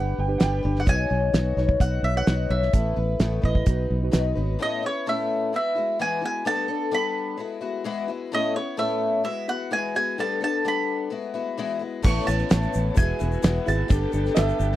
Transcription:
Already playing: G1 B3 D4 G4 B4 F#5
0.18 G1 G5
0.28 D4 G4 B4
0.38 G1 G3 B3 D4 G4 B4 F#5, snare, closed hi-hat
0.42 G5
0.63 G1 D4 G4 B4
0.76 F#5, snare
0.86 B1 B3 D#4 F#4 B4 C#5 G#5, kick, closed hi-hat
1.10 B1 D#4 F#4 C#5
1.33 B1 B3 D#4 F#4 C#5, snare, closed hi-hat
1.57 B1 D#4 F#4 B4 C#5, snare
1.69 kick
1.80 B1 B3 D#4 F#4 C#5 F#5, kick, closed hi-hat
2.03 B1 E5
2.16 D#4 B4 C#5 F#5
2.27 B1 B3 D#4 F#4 C#5, snare, closed hi-hat
2.49 B1 D#4 F#4 C#5 E5
2.62 snare
2.73 A1 A2 A3 B3 E4 A4 B4, kick, closed hi-hat
2.96 A1 B3 E4 B4
3.20 A1 A2 A3 B3 E4 B4, snare, closed hi-hat
3.42 A1 B3 E4 A4 B4 D#5, kick
3.55 kick
3.65 B1 F#3 B3 D#4 F#4 B4, kick, closed hi-hat
3.69 B4
3.90 B1
4.03 D#4 F#4 B4
4.11 B1 B2 D#3 F#3 B3 D#4 B4 D#5, snare, closed hi-hat
4.35 G#1 F#3 B3 D#4 B4
4.59 A2 A3 B3 C#4 E4 D#5
4.83 B3 C#4 E4 C#5
5.06 A2 A3 B3 C#4 E4 E5
5.53 G#3 B3 E4 F#4 E5
5.75 G#3 B3 E4 F#4
5.99 E2 E3 G#3 B3 E4 F#4 G#5
6.21 G#3 B3 E4 F#4 G#5
6.45 G3 B3 D4 A4 A5
6.68 B3 D4 A4
6.91 G3 B3 D4 A4 B5
7.37 G#3 B3 E4 F#4
7.61 G#3 B3 E4 F#4
7.84 E2 E3 G#3 B3 E4 F#4
8.08 G#3 B3 E4 F#4
8.32 A2 A3 B3 C#4 E4 D#5
8.54 B3 C#4 E4 C#5
8.77 A2 A3 B3 C#4 E4 E5
9.24 G#3 B3 E4 F#4 E5
9.48 G#3 B3 E4 F#4 F#5
9.71 E2 E3 G#3 B3 E4 F#4 G#5
9.95 G#3 B3 E4 F#4 G#5
10.18 G3 B3 D4 A4 A5
10.41 B3 D4 A4 A5
10.64 G3 B3 D4 A4 B5
11.10 G#3 B3 E4 F#4
11.34 G#3 B3 E4 F#4
11.58 E2 E3 G#3 B3 E4 F#4
11.79 G#3 B3 E4 F#4
12.02 A1 A2 A3 B3 C#4 E4 A4 B4 C#6, kick, crash, shaker
12.26 A1 B3 C#4 E4 A5, shaker
12.39 shaker
12.49 A1 A2 A3 B3 C#4 E4, snare, ride bell, shaker
12.62 shaker
12.74 A1, shaker
12.95 E1 G#3 B3 E4 F#4 G#4 G#5, kick, ride bell, shaker
12.99 G#4 B4
13.19 E1 G#3 B3 E4 F#4, shaker
13.32 shaker
13.42 E1 E2 E3 G#3 B3 E4 F#4, snare, ride bell, shaker
13.66 G#1 G#3 B3 E4 F#4 G#4 B4 A5, shaker
13.88 G1 G3 B3 D4 G4 A4 B4, kick, ride bell, shaker
14.12 G1 B3 D4 A4, shaker
14.26 snare, shaker
14.35 G1 G3 B3 D4 A4 D#5, snare, ride bell, shaker
14.39 E5
14.48 shaker
14.60 G1, shaker
14.72 snare

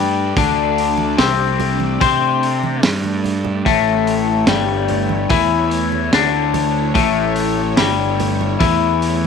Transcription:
Already playing: G2 G3 A3 D4 G4 D5
0.37 D2 D3 D4, kick, open hi-hat
0.78 open hi-hat
0.98 high conga
1.17 C2 C3 C4, snare, open hi-hat
1.60 open hi-hat, low conga
1.80 high conga
2.01 C3 C4 C5, kick, open hi-hat
2.43 open hi-hat
2.63 high conga
2.82 G2 G3 G4, snare, open hi-hat, high conga
3.04 high conga
3.24 open hi-hat, low conga
3.45 low conga
3.65 A1 A2 A3 E4 C#5, kick, open hi-hat
4.07 open hi-hat
4.47 G1 G2 G3, snare, open hi-hat, high conga
4.88 open hi-hat, low conga
5.09 high conga
5.30 E2 E3 E4, kick, open hi-hat
5.71 open hi-hat
5.92 high conga
6.13 D2 D3 D4, snare, open hi-hat
6.54 open hi-hat, high conga, low conga
6.94 A1 A2 A3, kick, open hi-hat
7.36 open hi-hat
7.76 G1 G2 G3, snare, open hi-hat, high conga
8.20 open hi-hat, low conga
8.41 high conga
8.59 E2 E3 E4, kick, open hi-hat
9.02 open hi-hat

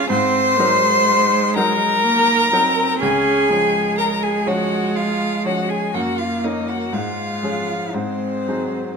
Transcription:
Already playing: G#3 F4 G#4
0.09 G#2 C4 C5 C6
0.59 F#3 G#3 D#4 A#4
1.55 F#3 D#4 A#4 A#5
2.04 A#3
2.52 F#3 C4 D#4 A#4
3.00 C#2 C#4 G#4 G#5
3.50 F3 G#3 C#4 C#5
3.98 A#4 A#5
4.23 G#4 G#5
4.46 F3 C#4 F#4 C#5 F#5
4.96 F4 F5
5.45 F3 C#4 F#4 C#5 F#5
5.69 G#4 G#5
5.93 F#2 A#3 F#4 F#5
6.18 F4 F5
6.44 A#3 C#4 D#4 C#5 D#5
6.68 F#4 F#5
6.93 G#2 G#3 F4 F5
7.43 F3 G#3 C#4 G#4
7.94 G#2 G#3 C4 C5
8.48 F#3 G#3 D#4 G#4

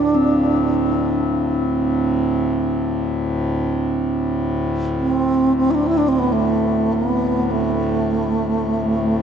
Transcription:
Already playing: D2 A2 D4
0.15 C4
4.99 C4
5.58 C4
5.71 D4 E4
5.87 E4
5.98 D4
6.08 C4
6.19 B3
6.32 A3
6.93 B3
7.51 A3

